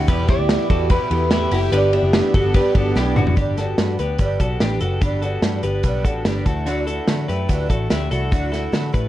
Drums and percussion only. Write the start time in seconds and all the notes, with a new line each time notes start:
0.08 kick, hi-hat pedal, ride
0.28 kick, snare, ride
0.49 snare, ride
0.70 kick, ride
0.90 kick, ride
1.11 ride
1.31 snare, ride
1.51 open hi-hat, ride
1.73 hi-hat pedal, ride
1.93 ride
2.13 snare, ride
2.34 kick, ride
2.54 kick, ride
2.75 kick, ride
2.96 snare
3.16 mid tom
3.27 floor tom
3.37 kick, closed hi-hat
3.58 snare, closed hi-hat
3.78 snare, closed hi-hat
3.99 closed hi-hat
4.18 kick, closed hi-hat
4.40 kick, closed hi-hat
4.60 snare, closed hi-hat
4.80 closed hi-hat
5.02 kick, closed hi-hat
5.22 closed hi-hat
5.43 snare, closed hi-hat
5.63 closed hi-hat
5.83 kick, closed hi-hat
6.05 kick, closed hi-hat
6.25 snare, closed hi-hat
6.46 kick, closed hi-hat
6.67 closed hi-hat
6.87 closed hi-hat
7.08 snare, closed hi-hat
7.29 closed hi-hat
7.49 kick, closed hi-hat
7.70 kick, closed hi-hat
7.90 snare, closed hi-hat
8.11 closed hi-hat
8.32 kick, closed hi-hat
8.53 snare, closed hi-hat
8.73 snare, closed hi-hat
8.94 kick, closed hi-hat